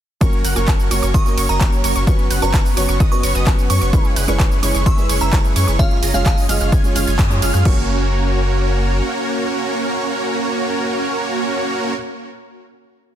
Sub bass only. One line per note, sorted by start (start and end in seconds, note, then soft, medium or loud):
0.21 0.42 F#1 loud
0.45 0.54 F#1 loud
0.56 0.65 F#1 loud
0.68 0.89 F#1 loud
0.91 1.00 F#1 loud
1.03 1.12 F#1 loud
1.14 1.35 F#1 loud
1.37 1.47 F#1 loud
1.49 1.58 F#1 loud
1.61 1.82 F#1 loud
1.84 1.93 F#1 medium
1.96 2.05 F#1 loud
2.07 2.28 F#1 loud
2.31 2.40 F#1 medium
2.42 2.51 F#1 loud
2.54 2.75 F#1 loud
2.77 2.86 F#1 loud
2.89 2.98 F#1 loud
3.00 3.21 F#1 loud
3.23 3.33 F#1 loud
3.35 3.44 F#1 loud
3.47 3.68 F#1 loud
3.70 3.79 F#2 loud
3.82 3.91 F#1 loud
3.93 4.14 F#1 loud
4.17 4.26 F#1 loud
4.28 4.37 F#1 loud
4.40 4.61 F#1 medium
4.63 4.72 F#1 loud
4.75 4.84 F#1 loud
4.86 5.07 F#1 loud
5.10 5.19 F#1 loud
5.21 5.30 F#1 loud
5.33 5.54 F#1 loud
5.56 5.65 F#2 loud
5.68 5.77 F#1 loud
5.79 6.00 F#1 medium
6.02 6.12 F#1 loud
6.14 6.23 F#1 loud
6.26 6.47 F#1 loud
6.49 6.58 F#1 loud
6.61 6.70 F#1 loud
6.72 6.93 F#1 loud
6.96 7.05 F#1 medium
7.07 7.17 F#1 loud
7.19 7.40 F#2 loud
7.42 7.51 F#1 loud
7.54 7.63 F#2 loud
7.65 9.01 F#1 loud